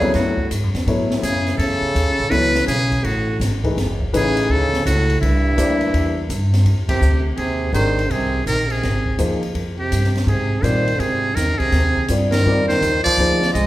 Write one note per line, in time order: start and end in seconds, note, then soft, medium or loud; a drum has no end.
0.00 0.12 E2 medium
0.00 0.13 C#3 medium
0.00 0.32 F#3 medium
0.00 0.33 B3 medium
0.00 0.33 E4 medium
0.00 0.12 G#4 medium
0.00 0.33 A4 medium
0.00 0.33 C#5 medium
0.00 kick medium
0.00 ride soft
0.14 0.49 F#2 medium
0.14 0.49 A2 medium
0.14 0.48 F#4 medium
0.14 snare soft
0.14 ride medium
0.37 kick medium
0.51 0.63 G#2 medium
0.51 hi-hat pedal medium
0.51 ride medium
0.63 0.74 F#2 medium
0.74 0.85 E2 medium
0.74 snare soft
0.74 ride soft
0.87 1.22 A2 medium
0.87 1.88 F#3 medium
0.87 1.88 A3 medium
0.87 1.88 B3 medium
0.87 1.88 E4 medium
0.87 1.88 C#5 medium
0.87 ride medium
1.11 snare soft
1.22 1.57 F#2 medium
1.22 1.57 C#3 medium
1.22 1.57 G#4 medium
1.22 hi-hat pedal medium
1.22 ride medium
1.46 snare soft
1.46 ride soft
1.58 1.80 E2 medium
1.58 2.31 C#3 medium
1.58 2.32 A4 medium
1.58 ride medium
1.81 muted upright bass stroke soft
1.95 2.07 D#2 medium
1.95 hi-hat pedal medium
1.95 ride medium
2.07 2.19 C#2 medium
2.20 2.30 A1 medium
2.29 2.66 C#2 medium
2.29 2.65 E3 medium
2.29 2.52 F#3 medium
2.29 2.52 B3 medium
2.29 2.52 E4 medium
2.29 2.52 A4 medium
2.29 2.66 B4 loud
2.29 2.53 C#5 medium
2.29 ride medium
2.55 snare medium
2.66 3.03 B1 medium
2.66 3.05 C#3 medium
2.66 3.06 G#4 medium
2.66 hi-hat pedal medium
2.66 ride medium
2.92 kick soft
2.92 ride soft
3.04 3.39 A1 medium
3.04 3.40 A2 medium
3.04 3.40 F#4 medium
3.04 ride medium
3.40 3.75 G#1 medium
3.40 snare soft
3.40 hi-hat pedal medium
3.40 ride medium
3.64 3.75 E3 medium
3.64 3.75 A3 medium
3.64 3.75 D#4 medium
3.64 3.76 G#4 medium
3.64 3.76 B4 medium
3.64 kick medium
3.64 ride soft
3.76 4.11 F#1 medium
3.76 snare soft
3.76 ride medium
4.00 kick medium
4.13 4.48 A1 medium
4.13 4.50 C#3 medium
4.13 4.68 E3 medium
4.13 4.68 A3 medium
4.13 4.68 D#4 medium
4.13 4.68 G#4 medium
4.13 4.52 G#4 loud
4.13 4.68 B4 medium
4.13 hi-hat pedal medium
4.13 ride medium
4.37 ride medium
4.49 4.84 D2 medium
4.49 4.85 C#3 medium
4.49 4.86 A4 loud
4.73 snare soft
4.86 5.20 C#2 medium
4.86 5.19 A2 medium
4.86 5.19 F#4 medium
4.86 hi-hat pedal medium
4.86 ride medium
5.10 ride soft
5.21 5.56 C2 medium
5.21 6.25 G2 medium
5.21 6.26 E4 medium
5.21 ride medium
5.57 5.92 D2 medium
5.57 6.12 A#3 medium
5.57 6.12 D4 medium
5.57 6.12 E4 medium
5.57 6.13 G4 medium
5.57 6.13 C5 medium
5.57 hi-hat pedal medium
5.57 ride medium
5.81 ride soft
5.94 6.29 E2 medium
5.94 ride medium
6.30 6.65 G2 medium
6.30 hi-hat pedal medium
6.30 ride medium
6.53 snare soft
6.53 ride soft
6.66 7.01 F2 medium
6.66 ride medium
6.88 7.22 C3 medium
6.88 7.23 G4 medium
6.88 kick medium
6.88 ride medium
7.01 7.37 D2 medium
7.01 hi-hat pedal medium
7.36 7.72 D#2 medium
7.36 7.71 C3 medium
7.36 7.72 G#4 medium
7.36 ride medium
7.73 8.09 G#1 medium
7.73 8.11 D#3 medium
7.73 7.95 D#3 soft
7.73 7.95 G#3 soft
7.73 7.95 D4 soft
7.73 7.95 G4 soft
7.73 7.95 A#4 medium
7.73 8.13 C5 medium
7.73 hi-hat pedal medium
7.73 ride medium
7.99 ride soft
8.10 8.45 C2 medium
8.10 8.45 C3 medium
8.10 8.47 G#4 medium
8.10 ride medium
8.46 8.82 A#1 medium
8.46 8.71 D#3 medium
8.46 8.73 A#4 loud
8.46 hi-hat pedal medium
8.46 ride medium
8.69 9.19 C3 medium
8.69 9.20 G#4 medium
8.69 ride soft
8.83 9.18 G#1 medium
8.83 snare soft
8.83 ride medium
9.06 kick medium
9.18 9.54 D#2 medium
9.18 9.40 F3 medium
9.18 9.40 A#3 medium
9.18 9.40 D#4 soft
9.18 9.40 G#4 medium
9.18 9.40 C5 medium
9.18 hi-hat pedal medium
9.18 ride medium
9.43 ride soft
9.55 9.90 F2 medium
9.55 ride medium
9.76 10.11 C3 medium
9.76 10.13 G4 medium
9.92 10.26 G2 medium
9.92 hi-hat pedal medium
9.92 ride medium
10.04 snare soft
10.15 snare soft
10.15 ride soft
10.25 10.62 G#2 medium
10.25 10.64 C3 medium
10.25 10.65 G#4 medium
10.25 ride medium
10.63 10.99 A#2 medium
10.63 11.01 D#3 medium
10.63 10.85 G3 medium
10.63 10.85 C4 medium
10.63 10.85 F4 soft
10.63 10.85 A#4 medium
10.63 11.01 C5 medium
10.63 10.85 D5 medium
10.63 hi-hat pedal soft
10.63 ride medium
10.88 ride soft
10.99 11.35 G#2 medium
10.99 11.36 C3 medium
10.99 11.37 G#4 medium
10.99 ride medium
11.35 11.58 E2 medium
11.35 11.60 D#3 medium
11.35 11.60 A#4 medium
11.35 snare soft
11.35 hi-hat pedal medium
11.35 ride medium
11.58 12.08 C3 medium
11.58 12.08 G#4 medium
11.58 muted upright bass stroke soft
11.58 kick medium
11.58 ride soft
11.72 12.07 D#2 medium
11.72 snare soft
11.72 ride medium
11.96 kick medium
12.08 12.44 G2 medium
12.08 12.31 G3 medium
12.08 12.31 C4 soft
12.08 12.31 F4 soft
12.08 12.31 A#4 soft
12.08 12.31 D5 medium
12.08 hi-hat pedal medium
12.08 ride medium
12.31 12.66 D#3 medium
12.31 12.66 A#4 loud
12.31 snare medium
12.31 ride medium
12.45 12.81 F2 medium
12.45 12.67 G3 medium
12.45 12.67 C4 medium
12.45 12.67 F4 medium
12.45 12.67 A#4 medium
12.45 12.68 D5 medium
12.67 13.01 D#3 medium
12.67 13.02 C5 medium
12.67 snare soft
12.81 13.03 D#2 medium
12.81 hi-hat pedal soft
12.81 ride medium
13.04 13.50 F3 medium
13.04 13.50 D5 loud
13.04 muted upright bass stroke soft
13.04 kick medium
13.04 ride soft
13.17 13.53 D2 medium
13.17 13.39 F3 medium
13.17 13.40 A#3 medium
13.17 13.39 D#4 medium
13.17 13.40 G#4 medium
13.17 13.40 C5 medium
13.17 ride medium
13.42 snare soft
13.53 13.67 C2 medium
13.53 13.67 G#3 medium
13.53 13.67 D#5 medium
13.53 hi-hat pedal medium
13.53 ride medium